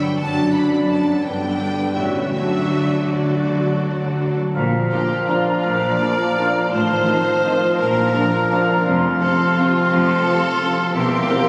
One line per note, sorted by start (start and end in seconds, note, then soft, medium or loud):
0.00 0.18 G2 medium
0.00 0.19 D3 soft
0.00 0.13 F#3 medium
0.00 0.33 F#3 medium
0.00 0.13 D4 medium
0.00 0.51 D4 soft
0.00 1.25 F#4 medium
0.00 0.19 B4 medium
0.00 0.17 G5 medium
0.16 1.19 F#1 medium
0.16 1.25 F#2 medium
0.16 1.19 F#2 medium
0.16 1.21 F#3 soft
0.16 0.85 F#3 medium
0.16 1.21 D4 medium
0.16 0.85 D4 medium
0.16 0.84 A4 medium
0.16 0.84 D5 medium
0.16 0.51 A5 medium
0.34 1.06 F#3 soft
0.52 0.88 D4 soft
0.52 0.89 B5 medium
0.71 1.76 D5 soft
0.87 1.23 F#3 soft
0.87 1.21 D4 medium
0.87 1.57 D4 soft
0.87 1.22 A4 soft
0.87 1.22 D5 soft
0.87 1.22 A5 medium
1.07 1.25 F#3 soft
1.23 1.95 G1 medium
1.23 1.97 G2 medium
1.23 1.95 G2 medium
1.23 1.95 D3 medium
1.23 1.96 G3 soft
1.23 1.96 B3 soft
1.23 1.94 D4 medium
1.23 1.94 B4 medium
1.23 1.94 D5 medium
1.23 1.96 G5 medium
1.41 2.33 B3 soft
1.58 1.97 D4 soft
1.77 1.97 D5 soft
1.95 2.31 A1 soft
1.95 2.33 A2 soft
1.95 2.32 A2 soft
1.95 2.30 F#3 soft
1.95 2.31 G3 soft
1.95 2.31 C#4 soft
1.95 2.31 F#4 soft
1.95 2.31 B4 soft
1.95 2.32 C#5 soft
1.95 2.31 E5 medium
2.15 2.67 F#4 soft
2.15 2.34 C#5 soft
2.31 4.33 D2 soft
2.31 3.42 D3 soft
2.31 4.34 D3 medium
2.31 4.34 F#3 soft
2.31 3.05 F#3 soft
2.31 4.37 D4 soft
2.31 3.05 F#4 soft
2.31 3.06 A4 soft
2.31 3.06 D5 soft
2.31 3.06 E5 medium
2.50 3.24 A3 soft
2.68 3.05 F#4 soft
2.87 3.99 D5 soft
3.06 4.35 F#3 soft
3.06 3.79 F#4 soft
3.06 4.35 F#4 soft
3.06 4.36 A4 soft
3.06 4.38 D5 soft
3.06 4.36 D5 soft
3.26 4.37 A3 soft
3.43 4.57 D3 soft
3.61 6.73 D4 soft
3.80 4.18 F#4 soft
4.01 5.26 D5 soft
4.19 4.57 F#4 soft
4.38 4.57 A3 soft
4.54 4.84 A#1 medium
4.54 5.62 A#2 medium
4.54 4.85 A#2 medium
4.54 6.68 F3 medium
4.54 6.67 D4 medium
4.54 6.68 F5 medium
4.54 6.68 A#5 medium
4.72 5.80 F3 soft
4.90 5.04 A#2 soft
4.90 5.04 F3 soft
4.90 5.98 A#3 soft
4.90 5.04 A#3 medium
4.90 4.99 D4 medium
4.90 5.04 F4 medium
4.90 5.00 F4 soft
4.90 5.25 G4 medium
4.90 4.99 F5 soft
5.10 5.44 F4 soft
5.27 5.41 A#2 soft
5.27 5.41 F3 soft
5.27 5.41 A#3 medium
5.27 5.36 D4 soft
5.27 5.35 F4 soft
5.27 5.41 F4 soft
5.27 5.64 F4 medium
5.27 6.35 D5 soft
5.27 5.37 F5 soft
5.45 6.17 F4 soft
5.63 5.93 A#1 medium
5.63 6.73 A#2 medium
5.63 5.93 A#2 medium
5.63 6.72 D5 medium
5.81 7.06 F3 soft
5.99 6.14 A#2 soft
5.99 6.14 F3 medium
5.99 6.73 A#3 soft
5.99 6.13 A#3 medium
5.99 6.08 D4 medium
5.99 6.08 F4 medium
5.99 6.14 F4 medium
5.99 6.08 F5 soft
6.18 6.53 F4 soft
6.36 6.50 A#2 medium
6.36 6.50 F3 medium
6.36 6.50 A#3 soft
6.36 6.45 D4 soft
6.36 6.50 F4 medium
6.36 6.45 F4 medium
6.36 6.73 D5 soft
6.36 6.45 F5 soft
6.54 7.24 F4 soft
6.71 7.01 A1 medium
6.71 7.01 A2 medium
6.71 7.80 A2 medium
6.71 8.81 F3 medium
6.71 7.80 D#4 medium
6.71 7.77 C5 loud
6.71 8.81 F5 medium
6.71 7.76 A5 medium
6.89 7.80 D#3 soft
7.06 7.20 D#3 medium
7.06 7.20 F3 medium
7.06 8.13 F3 soft
7.06 7.21 C4 medium
7.06 7.14 D#4 soft
7.06 7.15 F4 medium
7.06 7.21 F4 medium
7.06 7.16 F5 soft
7.25 7.60 F4 medium
7.43 7.56 D#3 medium
7.43 7.56 F3 medium
7.43 7.57 C4 medium
7.43 7.52 D#4 soft
7.43 7.52 F4 medium
7.43 7.57 F4 medium
7.43 7.80 D#5 medium
7.43 7.51 F5 soft
7.61 8.32 F4 medium
7.78 8.08 A#1 medium
7.78 8.86 A#2 medium
7.78 8.08 A#2 medium
7.78 8.87 D4 medium
7.78 8.83 A#4 loud
7.78 8.85 A#5 medium
7.95 8.86 A#3 soft
8.12 8.26 A#2 medium
8.12 8.26 F3 medium
8.12 9.20 F3 soft
8.12 8.27 D4 medium
8.12 8.22 D4 medium
8.12 8.27 F4 medium
8.12 8.22 F4 medium
8.12 8.21 F5 soft
8.33 8.67 F4 medium
8.50 8.63 A#2 medium
8.50 8.63 F3 medium
8.50 8.63 D4 medium
8.50 8.60 D4 medium
8.50 8.63 F4 medium
8.50 8.59 F4 medium
8.50 8.86 D5 medium
8.50 8.59 F5 medium
8.68 9.38 F4 medium
8.84 9.14 F1 medium
8.84 9.90 F2 medium
8.84 9.14 F2 medium
8.84 10.91 F3 medium
8.84 10.78 C4 medium
8.84 10.91 F5 medium
8.84 10.92 C6 medium
9.02 10.06 C3 medium
9.20 9.33 C3 medium
9.20 9.33 F3 medium
9.20 10.24 F3 medium
9.20 9.28 C4 medium
9.20 9.33 C4 medium
9.20 9.33 F4 medium
9.20 9.28 F4 medium
9.20 9.54 A4 medium
9.20 9.28 F5 soft
9.39 9.73 F4 medium
9.55 9.70 C3 medium
9.55 9.70 F3 medium
9.55 9.69 C4 medium
9.55 9.65 C4 medium
9.55 9.90 F4 medium
9.55 9.69 F4 medium
9.55 9.65 F4 medium
9.55 10.59 C5 medium
9.55 9.63 F5 medium
9.74 10.42 F4 medium
9.90 10.19 F1 medium
9.90 10.19 F2 medium
9.90 10.96 F2 medium
9.90 10.95 A4 loud
10.08 10.96 C3 soft
10.24 10.38 C3 medium
10.24 10.96 F3 medium
10.24 10.38 F3 medium
10.24 10.37 C4 medium
10.24 10.33 C4 medium
10.24 10.37 F4 medium
10.24 10.33 F4 medium
10.24 10.34 F5 medium
10.43 10.77 F4 medium
10.60 10.73 C3 medium
10.60 10.72 F3 medium
10.60 10.73 C4 medium
10.60 10.69 C4 medium
10.60 10.73 F4 medium
10.60 10.69 F4 medium
10.60 11.49 C5 medium
10.60 10.68 F5 medium
10.78 10.96 F4 medium
10.94 11.22 E1 medium
10.94 11.23 E2 medium
10.94 11.49 E2 medium
10.94 11.49 A#3 medium
10.94 11.49 C4 medium
10.94 11.49 G4 loud
10.94 11.49 E5 medium
10.94 11.49 C6 medium
11.11 11.49 E3 medium
11.28 11.42 C3 medium
11.28 11.49 A#3 medium
11.28 11.42 A#3 medium
11.28 11.42 C4 medium
11.28 11.37 C4 medium
11.28 11.41 G4 medium
11.28 11.37 A#4 medium
11.28 11.37 G5 medium